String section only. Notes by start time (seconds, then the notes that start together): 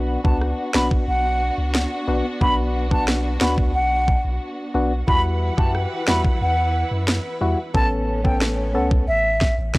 Already playing: B3 D4 F#4
5.08 E3 E4 B4 F#5
7.74 A3 B3 C#4